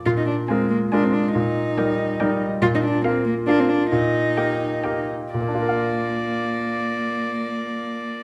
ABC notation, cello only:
X:1
M:3/4
L:1/16
Q:1/4=136
K:Bb
V:1 name="Cello"
F E D2 C2 B,2 D C D2 | E8- E2 z2 | F E D2 C2 B,2 D C D2 | E8- E2 z2 |
B,12- | B,12 |]